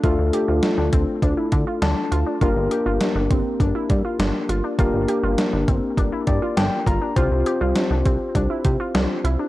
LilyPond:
<<
  \new Staff \with { instrumentName = "Tine electric piano" } { \time 4/4 \key g \dorian \tempo 4 = 101 << { r2. a''4 | r1 | r2 r8 d''8 g''8 bes''8 | r1 | } \\ { <a d' f' a'>1 | <bes d' g' bes'>1 | <bes d' g' bes'>1 | <c' f' g' c''>1 | } >> }
  \new Staff \with { instrumentName = "Synth pluck" } { \time 4/4 \key g \dorian f'8 g'16 f'8 d'16 c'8 d'16 e'8 f'16 d'8 f'16 d'16 | f'8 g'16 f'8 d'16 c'8 d'16 e'8 f'16 d'8 f'16 d'16 | f'8 g'16 f'8 d'16 c'8 d'16 e'8 f'16 d'8 f'16 d'16 | f'8 g'16 f'8 d'16 c'8 d'16 e'8 f'16 d'8 e'16 d'16 | }
  \new Staff \with { instrumentName = "Analog synth bass" } { \clef bass \time 4/4 \key g \dorian d,16 d,16 r16 d,16 r16 d,16 d,16 r16 d,16 r16 d16 r16 d,16 r16 d,16 r16 | g,,16 g,,16 r16 g,,16 r16 g,,16 g,,16 r16 g,,16 r16 g,16 r16 g,,16 r16 g,,16 r16 | g,,16 g,,16 r16 g,,16 r16 g,,16 g,,16 r16 g,,16 r16 g,16 r16 g,,16 r16 g,,16 r16 | c,16 c,16 r16 c,16 r16 c,16 c,16 r16 c,16 r16 c16 r16 c,16 r16 c,16 r16 | }
  \new DrumStaff \with { instrumentName = "Drums" } \drummode { \time 4/4 <hh bd>8 hh8 <hh sn>8 <hh bd>8 <hh bd>8 <hh bd>8 <hh sn>8 hh8 | <hh bd>8 hh8 <hh sn>8 <hh bd>8 <hh bd>8 <hh bd>8 <hh sn>8 hh8 | <hh bd>8 hh8 <hh sn>8 <hh bd>8 <hh bd>8 <hh bd>8 <hh sn>8 <hh bd>8 | <hh bd>8 hh8 <hh sn>8 <hh bd>8 <hh bd>8 <hh bd>8 <hh sn>8 hh8 | }
>>